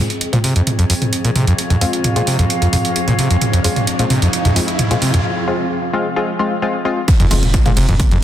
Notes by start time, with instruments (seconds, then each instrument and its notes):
Already playing: synth drone F3 C4, ambient pad C4 G#4 D#5, riser
0.00 synth stab G#3 C4 F4
0.10 closed hi-hat
0.21 closed hi-hat
0.33 acid bass A#2, synth stab G#3 C4 F4, closed hi-hat, mid tom
0.44 acid bass C3, open hi-hat
0.56 acid bass F2, closed hi-hat
0.64 ambient pad F5, closed hi-hat, mid tom
0.79 acid bass F2, closed hi-hat
0.90 acid bass F2, open hi-hat
1.02 closed hi-hat, mid tom
1.13 closed hi-hat
1.24 acid bass A#2, closed hi-hat
1.35 acid bass C3, mid tom, open hi-hat
1.47 acid bass F2, closed hi-hat
1.58 closed hi-hat
1.70 acid bass F2, closed hi-hat, mid tom
1.81 acid bass F2, synth stab G#3 C4 F4, open hi-hat
1.93 closed hi-hat
2.04 closed hi-hat, mid tom
2.16 acid bass A#2, synth stab G#3 C4 F4, closed hi-hat
2.27 acid bass C3, open hi-hat
2.39 acid bass F2, closed hi-hat, mid tom
2.50 closed hi-hat
2.62 acid bass F2, closed hi-hat
2.73 acid bass F2, mid tom, open hi-hat
2.85 closed hi-hat
2.96 closed hi-hat
3.08 acid bass A#2, closed hi-hat, mid tom
3.19 acid bass C3, open hi-hat
3.31 acid bass F2, closed hi-hat
3.41 closed hi-hat, mid tom
3.53 acid bass F2, closed hi-hat
3.64 acid bass F2, synth stab G#3 C4 F4, open hi-hat
3.76 closed hi-hat, mid tom
3.87 closed hi-hat
3.99 acid bass A#2, synth stab G#3 C4 F4, closed hi-hat
4.10 acid bass C3, mid tom, open hi-hat
4.22 acid bass F2, closed hi-hat
4.33 closed hi-hat
4.45 acid bass F2, closed hi-hat, mid tom
4.56 acid bass F2, synth stab G#3 C4 F4, open hi-hat
4.68 closed hi-hat
4.79 closed hi-hat, mid tom
4.91 acid bass A#2, synth stab G#3 C4 F4, closed hi-hat
5.02 acid bass C3, open hi-hat
5.14 acid bass F2, closed hi-hat, mid tom
5.48 synth stab G#3 C4 F4
5.93 synth stab G#3 C4 F4
6.16 synth stab G#3 C4 F4
6.39 synth stab G#3 C4 F4
6.62 synth stab G#3 C4 F4
6.85 synth stab G#3 C4 F4
7.08 ambient pad C4, kick, closed hi-hat, ride, impact
7.20 acid bass F2, closed hi-hat, mid tom
7.31 sub bass F1, acid bass F2, synth stab G#3 C4 F4, open hi-hat, ride
7.43 sub bass F1, closed hi-hat, mid tom
7.54 ambient pad G#4, kick, closed hi-hat, ride
7.66 acid bass A#2, synth stab G#3 C4 F4, closed hi-hat, mid tom
7.77 sub bass F1, acid bass C3, open hi-hat, ride
7.89 sub bass F1, acid bass F2, closed hi-hat, mid tom
8.00 kick, closed hi-hat, ride
8.11 acid bass F2, closed hi-hat, mid tom